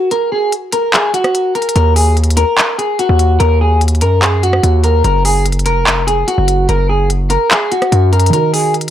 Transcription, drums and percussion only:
0.11 closed hi-hat
0.52 closed hi-hat
0.72 closed hi-hat
0.94 clap, closed hi-hat
1.14 closed hi-hat
1.24 cross-stick, closed hi-hat
1.35 closed hi-hat
1.55 closed hi-hat
1.62 closed hi-hat
1.69 closed hi-hat
1.76 closed hi-hat
1.96 open hi-hat
2.17 closed hi-hat
2.24 closed hi-hat
2.30 closed hi-hat
2.37 closed hi-hat
2.58 clap, closed hi-hat
2.79 closed hi-hat
2.99 closed hi-hat
3.19 closed hi-hat
3.40 closed hi-hat
3.81 closed hi-hat
3.88 closed hi-hat
3.95 closed hi-hat
4.01 closed hi-hat
4.22 clap, closed hi-hat
4.43 closed hi-hat
4.53 cross-stick
4.63 closed hi-hat
4.84 closed hi-hat
5.04 closed hi-hat
5.25 open hi-hat
5.46 closed hi-hat
5.52 closed hi-hat
5.59 closed hi-hat
5.66 closed hi-hat
5.87 clap, closed hi-hat
6.08 closed hi-hat
6.28 closed hi-hat
6.48 closed hi-hat
6.69 closed hi-hat
7.10 closed hi-hat
7.30 closed hi-hat
7.51 clap, closed hi-hat
7.72 closed hi-hat
7.82 cross-stick, closed hi-hat
7.92 closed hi-hat
8.13 closed hi-hat
8.20 closed hi-hat
8.26 closed hi-hat
8.33 closed hi-hat
8.54 open hi-hat
8.74 closed hi-hat
8.81 closed hi-hat

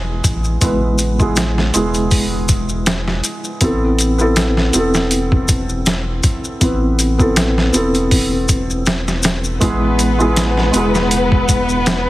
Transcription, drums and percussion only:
0.24 kick, closed hi-hat, maracas
0.44 maracas
0.61 kick, closed hi-hat, maracas
0.98 closed hi-hat, maracas
1.20 kick, maracas
1.36 snare, closed hi-hat, maracas
1.58 snare
1.74 closed hi-hat, maracas
1.94 closed hi-hat, maracas
2.11 kick, open hi-hat, maracas
2.49 kick, closed hi-hat, maracas
2.69 maracas
2.86 snare, closed hi-hat, maracas
3.08 snare
3.24 closed hi-hat, maracas
3.44 maracas
3.61 kick, closed hi-hat, maracas
3.99 closed hi-hat, maracas
4.19 maracas
4.36 snare, closed hi-hat, maracas
4.57 snare
4.73 closed hi-hat, maracas
4.94 snare, maracas
5.11 closed hi-hat, maracas
5.32 kick
5.48 kick, closed hi-hat, maracas
5.69 maracas
5.86 snare, closed hi-hat, maracas
6.23 kick, closed hi-hat, maracas
6.45 maracas
6.61 kick, closed hi-hat, maracas
6.99 closed hi-hat, maracas
7.20 kick, maracas
7.36 snare, closed hi-hat, maracas
7.58 snare
7.74 closed hi-hat, maracas
7.95 closed hi-hat, maracas
8.11 kick, open hi-hat, maracas
8.49 kick, closed hi-hat, maracas
8.70 maracas
8.86 snare, closed hi-hat, maracas
9.08 snare, maracas
9.23 snare, closed hi-hat, maracas
9.44 maracas
9.61 kick, closed hi-hat, maracas
9.99 closed hi-hat, maracas
10.20 maracas
10.36 snare, closed hi-hat, maracas
10.57 snare
10.74 closed hi-hat, maracas
10.95 snare, maracas
11.11 closed hi-hat, maracas
11.32 kick
11.49 kick, closed hi-hat, maracas
11.69 maracas
11.86 snare, closed hi-hat, maracas

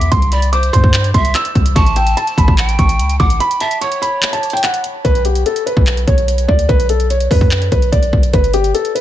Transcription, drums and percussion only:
0.01 closed hi-hat
0.12 kick, closed hi-hat
0.22 closed hi-hat
0.32 closed hi-hat
0.42 closed hi-hat
0.53 closed hi-hat
0.63 closed hi-hat
0.73 kick, closed hi-hat
0.84 kick
0.94 clap, closed hi-hat
1.04 closed hi-hat
1.14 kick, closed hi-hat
1.25 closed hi-hat
1.35 clap, closed hi-hat
1.45 closed hi-hat
1.55 kick, closed hi-hat
1.66 closed hi-hat
1.76 kick, closed hi-hat
1.86 closed hi-hat
1.96 closed hi-hat
2.07 closed hi-hat
2.17 closed hi-hat
2.27 closed hi-hat
2.38 kick, closed hi-hat
2.48 kick
2.58 clap, closed hi-hat
2.69 closed hi-hat
2.79 kick, closed hi-hat
2.89 closed hi-hat
2.99 closed hi-hat
3.09 closed hi-hat
3.20 kick, closed hi-hat
3.30 closed hi-hat
3.40 closed hi-hat
3.51 closed hi-hat
3.60 closed hi-hat
3.71 closed hi-hat
3.82 closed hi-hat
3.92 closed hi-hat
4.03 closed hi-hat
4.23 clap, closed hi-hat
4.33 closed hi-hat
4.43 closed hi-hat
4.50 closed hi-hat
4.57 closed hi-hat
4.64 clap, closed hi-hat
4.74 closed hi-hat
4.84 closed hi-hat
5.05 kick, closed hi-hat
5.15 closed hi-hat
5.25 closed hi-hat
5.35 closed hi-hat
5.46 closed hi-hat
5.56 closed hi-hat
5.67 closed hi-hat
5.77 kick
5.87 clap, closed hi-hat
5.97 closed hi-hat
6.08 kick, closed hi-hat
6.18 closed hi-hat
6.28 closed hi-hat
6.38 closed hi-hat
6.49 kick
6.59 closed hi-hat
6.69 kick, closed hi-hat
6.80 closed hi-hat
6.89 closed hi-hat
7.00 closed hi-hat
7.10 closed hi-hat
7.20 closed hi-hat
7.31 kick, open hi-hat
7.41 kick
7.51 clap, closed hi-hat
7.62 closed hi-hat
7.72 kick, closed hi-hat
7.82 closed hi-hat
7.92 kick, closed hi-hat
8.03 closed hi-hat
8.13 kick
8.23 closed hi-hat
8.33 kick, closed hi-hat
8.44 closed hi-hat
8.53 closed hi-hat
8.64 closed hi-hat
8.75 closed hi-hat
8.85 closed hi-hat
8.96 closed hi-hat

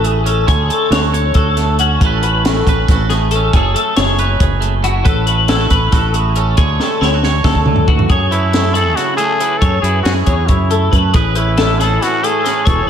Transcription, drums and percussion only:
0.04 closed hi-hat
0.26 closed hi-hat
0.48 kick, closed hi-hat
0.70 closed hi-hat
0.92 snare, closed hi-hat
1.14 closed hi-hat
1.34 kick, closed hi-hat
1.57 snare, closed hi-hat
1.79 closed hi-hat
2.01 kick, closed hi-hat
2.23 closed hi-hat
2.45 snare, closed hi-hat
2.67 kick, closed hi-hat
2.88 kick, snare, closed hi-hat
3.10 snare, closed hi-hat
3.31 closed hi-hat
3.53 kick, closed hi-hat
3.76 closed hi-hat
3.97 snare, closed hi-hat
4.19 closed hi-hat
4.40 kick, closed hi-hat
4.62 closed hi-hat
4.84 closed hi-hat
5.05 kick, closed hi-hat
5.27 closed hi-hat
5.48 snare, closed hi-hat
5.70 kick, closed hi-hat
5.92 kick, snare, closed hi-hat
6.14 closed hi-hat
6.36 closed hi-hat
6.57 kick, closed hi-hat
6.80 snare
7.02 snare
7.23 snare
7.44 kick, snare
7.55 kick
7.66 mid tom
7.76 floor tom
7.88 kick
7.99 floor tom
8.10 kick, closed hi-hat
8.32 closed hi-hat
8.53 snare, closed hi-hat
8.75 closed hi-hat
8.97 snare, closed hi-hat
9.18 closed hi-hat
9.40 closed hi-hat
9.62 kick, closed hi-hat
9.84 closed hi-hat
10.05 snare, closed hi-hat
10.26 kick, closed hi-hat
10.48 kick, closed hi-hat
10.71 closed hi-hat
10.93 kick, closed hi-hat
11.14 kick, closed hi-hat
11.35 closed hi-hat
11.58 snare, closed hi-hat
11.81 snare, closed hi-hat
12.02 snare, closed hi-hat
12.24 closed hi-hat
12.46 snare, closed hi-hat
12.67 kick, closed hi-hat

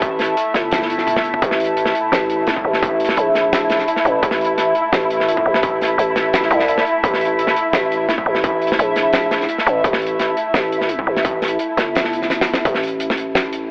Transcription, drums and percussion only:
0.02 kick, closed hi-hat
0.19 snare, closed hi-hat
0.24 closed hi-hat
0.37 closed hi-hat
0.54 kick, snare, closed hi-hat
0.71 snare, closed hi-hat
0.82 snare
0.90 closed hi-hat
0.98 snare
1.07 closed hi-hat, high tom
1.16 snare, high tom
1.24 closed hi-hat
1.34 mid tom
1.42 kick, closed hi-hat
1.51 snare
1.60 closed hi-hat
1.64 closed hi-hat
1.77 closed hi-hat
1.86 snare
1.95 closed hi-hat
2.12 snare, closed hi-hat
2.30 closed hi-hat
2.47 snare, closed hi-hat
2.57 kick
2.73 snare
2.83 kick, closed hi-hat
3.00 closed hi-hat
3.04 closed hi-hat
3.09 snare
3.17 closed hi-hat
3.35 snare, closed hi-hat
3.53 snare, closed hi-hat
3.70 snare, closed hi-hat
3.79 snare
3.88 closed hi-hat
3.96 snare
4.05 closed hi-hat
4.23 kick, closed hi-hat
4.31 snare
4.41 closed hi-hat
4.44 closed hi-hat
4.58 snare, closed hi-hat
4.75 closed hi-hat
4.92 snare, closed hi-hat
5.10 closed hi-hat
5.20 snare
5.28 closed hi-hat
5.37 kick
5.54 snare
5.63 kick, closed hi-hat
5.81 snare, closed hi-hat
5.84 closed hi-hat
5.99 closed hi-hat
6.16 snare, closed hi-hat
6.33 snare, closed hi-hat
6.42 snare
6.51 closed hi-hat
6.59 snare
6.68 closed hi-hat
6.78 snare
6.86 closed hi-hat
7.04 kick, closed hi-hat
7.14 snare
7.21 closed hi-hat
7.25 closed hi-hat
7.39 closed hi-hat
7.47 snare
7.56 closed hi-hat
7.73 snare, closed hi-hat
7.92 closed hi-hat
8.09 snare, closed hi-hat
8.18 kick
8.35 snare
8.44 kick, closed hi-hat
8.62 closed hi-hat
8.67 closed hi-hat
8.72 snare
8.79 closed hi-hat
8.96 snare, closed hi-hat
9.13 snare, closed hi-hat
9.31 snare, closed hi-hat
9.41 snare
9.49 closed hi-hat
9.58 snare
9.67 closed hi-hat
9.84 kick, closed hi-hat
9.93 snare
10.02 closed hi-hat
10.06 closed hi-hat
10.19 snare, closed hi-hat
10.37 closed hi-hat
10.54 snare, closed hi-hat
10.72 closed hi-hat
10.81 snare
10.89 closed hi-hat
10.99 kick
11.17 snare
11.25 kick, closed hi-hat
11.42 snare, closed hi-hat
11.48 closed hi-hat
11.59 closed hi-hat
11.77 kick, snare, closed hi-hat
11.95 snare, closed hi-hat
12.04 snare
12.13 closed hi-hat
12.22 snare
12.30 snare, closed hi-hat
12.41 snare
12.47 closed hi-hat
12.54 snare
12.65 kick, closed hi-hat
12.75 snare
12.83 closed hi-hat
12.87 closed hi-hat
13.00 closed hi-hat
13.10 snare
13.17 closed hi-hat
13.35 snare, closed hi-hat
13.53 closed hi-hat

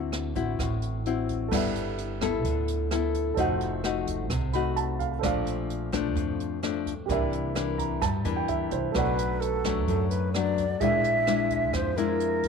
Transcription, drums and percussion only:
0.12 cross-stick, closed hi-hat
0.36 kick, closed hi-hat
0.59 kick, cross-stick, closed hi-hat
0.82 closed hi-hat
1.06 closed hi-hat
1.29 kick, closed hi-hat
1.52 kick, cross-stick, crash
1.76 closed hi-hat
1.98 closed hi-hat
2.21 kick, cross-stick, closed hi-hat
2.45 kick, closed hi-hat
2.68 closed hi-hat
2.91 cross-stick, closed hi-hat
3.14 kick, closed hi-hat
3.37 kick, closed hi-hat
3.61 closed hi-hat
3.84 cross-stick, closed hi-hat
4.07 kick, closed hi-hat
4.30 kick, cross-stick, closed hi-hat
4.53 closed hi-hat
4.76 closed hi-hat
5.00 kick, closed hi-hat
5.23 kick, cross-stick, closed hi-hat
5.47 closed hi-hat
5.70 closed hi-hat
5.93 kick, cross-stick, closed hi-hat
6.16 kick, closed hi-hat
6.40 closed hi-hat
6.63 cross-stick, closed hi-hat
6.86 kick, closed hi-hat
7.09 kick, closed hi-hat
7.33 closed hi-hat
7.56 cross-stick, closed hi-hat
7.79 kick, closed hi-hat
8.02 kick, cross-stick, closed hi-hat
8.25 closed hi-hat
8.48 closed hi-hat
8.71 kick, closed hi-hat
8.95 kick, cross-stick, closed hi-hat
9.18 closed hi-hat
9.42 closed hi-hat
9.64 kick, cross-stick, closed hi-hat
9.88 kick, closed hi-hat
10.11 closed hi-hat
10.34 cross-stick, closed hi-hat
10.58 kick, closed hi-hat
10.81 kick, closed hi-hat
11.04 closed hi-hat
11.27 cross-stick, closed hi-hat
11.50 kick, closed hi-hat
11.73 kick, cross-stick, closed hi-hat
11.97 closed hi-hat
12.20 closed hi-hat
12.43 kick, closed hi-hat

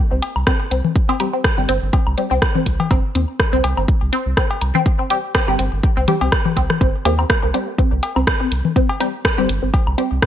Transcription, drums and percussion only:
0.22 closed hi-hat, cowbell
0.36 low woodblock
0.47 kick, cross-stick
0.71 closed hi-hat
0.85 low conga
0.96 kick
1.09 cowbell
1.20 closed hi-hat, low woodblock
1.44 kick, cross-stick
1.69 closed hi-hat
1.93 kick, cowbell
2.07 low woodblock
2.18 closed hi-hat
2.42 kick, cross-stick
2.55 low conga
2.66 kick, closed hi-hat
2.80 cowbell, low conga
2.91 kick, low woodblock
3.15 closed hi-hat
3.40 kick, cross-stick
3.64 closed hi-hat, cowbell
3.77 low woodblock
3.88 kick
4.13 closed hi-hat
4.37 kick, cross-stick
4.51 cowbell
4.62 closed hi-hat, low woodblock
4.75 low conga
4.86 kick
5.10 closed hi-hat
5.35 kick, cross-stick, cowbell
5.48 low woodblock
5.59 closed hi-hat
5.83 kick
6.08 closed hi-hat, low conga
6.21 cowbell
6.32 kick, cross-stick, low woodblock
6.46 low conga
6.57 kick, closed hi-hat
6.70 cross-stick, low conga
6.81 kick
7.05 closed hi-hat, cowbell
7.19 low woodblock
7.30 kick, cross-stick
7.54 closed hi-hat
7.79 kick
8.03 closed hi-hat, cowbell
8.16 low woodblock
8.27 kick, cross-stick
8.52 closed hi-hat
8.65 low conga
8.76 kick
8.89 cowbell
9.01 closed hi-hat, low woodblock
9.25 kick, cross-stick
9.49 closed hi-hat
9.74 kick, cowbell
9.87 low woodblock
9.98 closed hi-hat
10.22 kick, cross-stick

